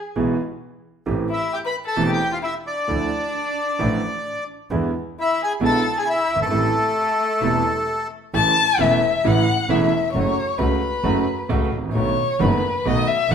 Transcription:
0.16 0.35 B1 medium
0.16 0.36 B1 medium
0.16 0.35 B2 medium
0.16 0.35 E3 medium
0.16 0.35 G#3 medium
0.16 0.36 B3 medium
0.16 0.35 G#4 medium
1.06 1.26 A1 medium
1.06 1.26 A2 medium
1.06 1.26 E3 medium
1.06 1.26 A3 soft
1.06 1.26 C4 soft
1.06 1.26 G4 medium
1.29 1.51 E4 medium
1.34 1.55 E5 medium
1.53 1.58 G4 medium
1.53 1.59 G5 medium
1.65 1.75 B4 medium
1.65 1.76 B5 medium
1.86 2.07 A4 medium
1.86 2.11 A5 medium
1.96 2.17 E1 medium
1.96 2.17 E2 medium
1.96 2.17 E3 medium
1.96 2.17 A3 medium
1.96 2.17 C4 medium
1.96 2.17 G4 medium
2.08 2.30 G4 medium
2.13 2.35 G5 medium
2.32 2.37 F4 medium
2.32 2.38 F5 medium
2.42 2.53 E4 medium
2.42 2.54 E5 medium
2.66 4.44 D4 medium
2.66 4.44 D5 medium
2.88 3.08 D2 medium
2.88 3.08 D3 medium
2.88 3.08 F3 soft
2.88 3.08 A3 medium
2.88 3.08 E4 medium
3.79 3.99 A1 medium
3.79 4.00 A1 medium
3.79 3.99 A2 medium
3.79 3.98 D3 medium
3.79 3.99 F3 medium
3.79 3.99 A3 medium
3.79 3.99 E4 medium
4.70 4.89 E2 medium
4.70 4.90 E2 medium
4.70 4.89 D3 medium
4.70 4.90 E3 medium
4.70 4.90 G#3 medium
4.70 4.89 B3 soft
4.70 4.90 E4 medium
5.19 5.39 E4 medium
5.19 5.42 E5 medium
5.42 5.52 G#4 medium
5.42 5.53 G#5 medium
5.60 5.80 B1 medium
5.60 5.80 B2 medium
5.60 5.80 D3 medium
5.60 5.80 G#3 medium
5.60 5.80 B3 medium
5.60 5.80 E4 medium
5.60 5.94 A4 medium
5.65 5.98 A5 medium
5.97 6.07 G#4 medium
5.97 6.09 G#5 medium
6.09 6.39 E4 medium
6.09 6.40 E5 medium
6.29 6.52 G1 medium
6.36 6.41 F#1 soft
6.40 6.46 G1 medium
6.40 8.07 A3 medium
6.40 8.08 A4 medium
6.45 6.51 G#1 medium
6.50 6.70 A1 medium
6.50 6.71 A1 medium
6.50 6.70 A2 medium
6.50 6.70 C3 medium
6.50 6.70 G3 soft
6.50 6.70 A3 soft
6.50 6.70 E4 medium
7.41 7.61 E1 medium
7.41 7.61 E2 medium
7.41 7.61 C3 medium
7.41 7.61 G3 medium
7.41 7.61 A3 medium
7.41 7.61 E4 medium
8.34 8.53 A1 medium
8.34 8.53 A2 medium
8.34 8.53 C#3 medium
8.34 8.53 E3 soft
8.34 8.53 A3 medium
8.34 8.53 E4 medium
8.34 8.82 A5 loud
8.79 8.98 E1 medium
8.79 8.98 E2 medium
8.79 8.98 C#3 medium
8.79 8.98 E3 medium
8.79 8.98 A3 medium
8.79 8.98 E4 medium
8.79 9.28 E5 medium
9.24 9.43 A1 medium
9.24 9.44 A1 medium
9.24 9.44 A2 medium
9.24 9.43 C#3 medium
9.24 9.43 E3 medium
9.24 9.44 A3 medium
9.24 9.44 E4 medium
9.24 9.72 F#5 medium
9.69 9.88 E1 medium
9.69 9.88 E2 medium
9.69 9.88 C#3 medium
9.69 9.88 E3 medium
9.69 9.88 A3 medium
9.69 9.89 E4 medium
9.69 10.13 E5 medium
10.13 10.34 F#1 medium
10.13 10.34 F#2 medium
10.13 10.34 C#3 medium
10.13 10.34 F#3 medium
10.13 10.34 A3 medium
10.13 10.34 F#4 medium
10.13 10.59 C#5 medium
10.58 10.78 C#2 medium
10.58 10.78 C#3 medium
10.58 10.78 F#3 medium
10.58 10.78 A3 medium
10.58 10.79 F#4 medium
10.58 11.71 B4 medium
11.04 11.24 F#1 medium
11.04 11.23 F#2 medium
11.04 11.23 C#3 medium
11.04 11.23 F#3 medium
11.04 11.23 A3 medium
11.04 11.23 F#4 medium
11.49 11.69 C#2 medium
11.49 11.69 C#3 medium
11.49 11.69 F#3 medium
11.49 11.69 A3 medium
11.49 11.69 F#4 medium
11.73 11.95 A1 soft
11.77 11.83 G#1 soft
11.83 11.89 A1 medium
11.89 11.95 A#1 medium
11.94 12.14 B1 medium
11.94 12.14 B2 medium
11.94 12.14 D#3 medium
11.94 12.14 A3 medium
11.94 12.14 B3 medium
11.94 12.14 F#4 medium
11.94 12.42 C#5 medium
12.39 12.58 F#1 medium
12.39 12.59 F#1 loud
12.39 12.58 F#2 medium
12.39 12.58 D#3 medium
12.39 12.59 A3 medium
12.39 12.59 B3 medium
12.39 12.59 F#4 medium
12.39 12.88 B4 medium
12.85 13.04 B1 medium
12.85 13.04 B2 medium
12.85 13.04 D#3 medium
12.85 13.04 A3 medium
12.85 13.04 B3 medium
12.85 13.04 F#4 medium
12.85 13.09 D#5 medium
13.07 13.32 E5 medium
13.30 13.35 F#1 medium
13.30 13.35 F#2 medium
13.30 13.35 D#3 medium
13.30 13.35 A3 medium
13.30 13.35 B3 medium
13.30 13.35 F#4 medium
13.30 13.35 F#5 medium

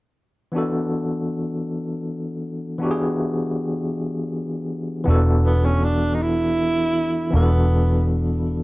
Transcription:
0.52 2.75 E3 medium
0.52 2.76 B3 medium
0.52 2.77 D4 medium
0.56 2.77 F#4 medium
0.56 2.78 A4 medium
2.78 5.02 E3 medium
2.78 5.02 B3 medium
2.78 5.03 D4 medium
2.83 5.04 F#4 medium
2.83 2.89 G4 medium
2.91 5.08 G#4 medium
5.04 7.29 E1 medium
5.04 7.28 E3 medium
5.04 7.28 B3 medium
5.04 7.29 D4 medium
5.09 7.30 F#4 medium
5.09 7.31 A4 medium
5.46 5.67 B3 medium
5.65 5.86 C#4 medium
5.84 6.16 D4 medium
6.14 6.24 D#4 medium
6.22 7.34 E4 loud
7.31 8.63 E1 loud
7.31 8.63 E3 medium
7.31 8.63 B3 soft
7.31 8.63 D4 medium
7.35 8.15 B3 medium
7.35 8.63 F#4 medium
7.35 8.63 A4 medium

